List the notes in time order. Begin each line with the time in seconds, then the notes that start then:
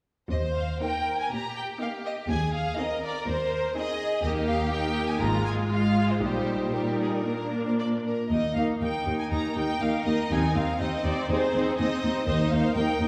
0.30 D#2 C5 D#5
0.56 F5
0.81 A#3 D#4 A#4 G5
1.20 G#5
1.31 A#2 G4 A#5
1.57 G5
1.80 A#3 D#4 F5
2.06 D#5
2.29 D#2 G#4 G#5
2.54 F5
2.78 C4 D#4 A#4 D#5
3.03 D5
3.27 D#2 C5
3.76 C4 D#4 G#4 D#5
4.23 D#2 A#3 D#4 G4 D#5
4.48 F5
4.72 A#3 D#4 G5
5.09 G#5
5.21 G#1 G#2 G#3 F4 A#5
5.45 G#5
5.71 G#3 F4 F5
6.10 C5
6.22 A#1 A#2 G3 D#4 G4 C5
6.73 G3 D#4 G4 A#4
7.01 G#4
7.26 A#3 D4 A#4
7.67 C5
7.80 D5
8.05 A#4
8.30 D#2 A#3 D#4 D#5
8.56 D#2 A#3 D#4 F5
8.80 D#2 A#3 D#4 G5
9.05 D#2 A#3 D#4
9.20 G#5
9.31 D#2 A#3 D#4 A#4 A#5
9.56 D#2 A#3 D#4 G5
9.82 D#2 A#3 D#4 F5
10.06 D#2 A#3 D#4 D#5
10.31 D#2 C4 D#4 G#5
10.56 D#2 C4 D#4 F5
10.80 D#2 C4 D#4 C5 D#5
11.05 D#2 C4 D#4 D5
11.29 D#2 C4 D#4 G#4 C5
11.54 D#2 C4 D#4
11.79 D#2 C4 D#4 C5 D#5
12.03 D#2 C4 D#4
12.27 D#2 A#3 D#4 D#5
12.52 D#2 A#3 D#4 F5
12.75 D#2 A#3 D#4 A#4 G5
13.00 D#2 A#3 D#4